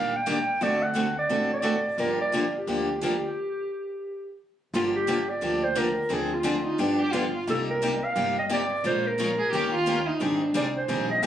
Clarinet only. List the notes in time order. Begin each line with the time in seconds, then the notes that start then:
Already playing: F5
0.17 G5
0.63 D5
0.82 F#5
1.19 D5
1.53 D5
2.00 A#4
2.21 D5
2.58 G4
4.75 F4
4.95 G4
5.29 D5
5.64 C5
5.78 A#4
6.13 G#4
6.34 F4
7.50 A4
7.70 A#4
8.04 F5
8.39 D#5
8.53 D5
8.86 C5
9.07 A#4
10.57 D5
10.77 C5
11.10 D#5
11.23 G5